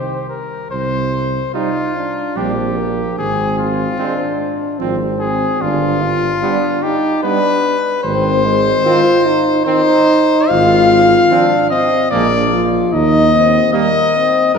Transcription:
Already playing: C2 D#3 C4 G4 C5
0.30 A#4
0.71 C2 C5
1.54 G3 D#4 F4
1.95 D4
2.36 A#1 G3 C4 D4 G4
2.77 A#3
3.18 G#1 C4 G#4
3.59 F4
3.99 G#3 C4 D4
4.79 G#1 F3 C4
5.20 G#4
5.61 G1 D4 F4
6.02 F4
6.42 G3 B3 D4
6.83 D#4 G4
7.23 G3 B3 D4 B4
8.04 G#1 C4 C5
8.45 G#3
8.84 D#3 C4 F4
9.26 D#4
9.65 D#3 C4 D#4 C5
10.48 G#1 F4 F5
11.30 F3 C4 D4
11.70 C4 D#5
12.11 A#1 G#3 A#3 D4 D5
12.53 F4
12.92 D#2 D#4 D#5
13.34 C4
13.72 G3 A#3 D#5
14.16 C4
14.54 F2 G#3 D4 A#4

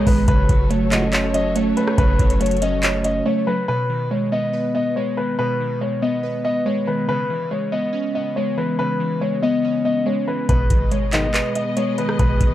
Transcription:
Already playing: B2 D#3 G#3 B3 G#4 B4 D#5
0.07 G#1 D#3 B4, kick, open hi-hat
0.28 F#1 C#3 F#3 F#4 A4 B4 C#5, kick, closed hi-hat
0.49 F#1 F#3, kick, closed hi-hat
0.70 A3 C#5, closed hi-hat
0.91 C#2 A2 F#3 C#4 D#5, clap, closed hi-hat
1.13 C#5, clap, closed hi-hat
1.34 C#4 D#5, closed hi-hat
1.56 A3 C#5, closed hi-hat
1.77 F#3 B4, closed hi-hat
1.88 cross-stick
1.98 F#1 C#3 B4, kick, closed hi-hat
2.19 F#1 F#3, kick, closed hi-hat
2.30 closed hi-hat
2.40 A3 C#5, closed hi-hat
2.46 closed hi-hat
2.51 closed hi-hat
2.57 closed hi-hat
2.62 C#4 D#5, closed hi-hat
2.83 C#5, clap, closed hi-hat
3.04 C#4 D#5, closed hi-hat
3.26 A3 C#5
3.47 F#3 B4
3.68 B2 B4
3.90 D#3
4.11 G#3 C#5
4.32 B3 D#5
4.53 B4
4.75 B3 D#5
4.96 G#3 C#5
5.17 D#3 B4
5.39 B2 B4
5.60 D#3
5.81 G#3 C#5
6.02 B3 D#5
6.23 B4
6.45 B3 D#5
6.66 G#3 C#5
6.87 D#3 B4
7.09 C#3 B4
7.30 E3
7.51 G#3 C#5
7.72 B3 D#5
7.93 C#4
8.15 B3 D#5
8.36 G#3 C#5
8.57 E3 B4
8.79 C#3 B4
9.00 E3
9.21 G#3 C#5
9.42 B3 D#5
9.64 C#4
9.85 B3 D#5
10.06 G#3 C#5
10.28 E3 B4
10.49 G#1 B2 G#3 G#4 B4 D#5, kick, closed hi-hat
10.70 G#1 D#3, kick, closed hi-hat
10.91 G#3 C#5, closed hi-hat
11.13 B1 G#2 D#3 B3 D#5, clap, closed hi-hat
11.34 B4, clap, closed hi-hat
11.55 B3 D#5, closed hi-hat
11.77 G#3 C#5, closed hi-hat
11.98 D#3 B4, closed hi-hat
12.09 cross-stick
12.19 G#1 B2 B4, kick, closed hi-hat
12.40 G#1 D#3, kick, closed hi-hat

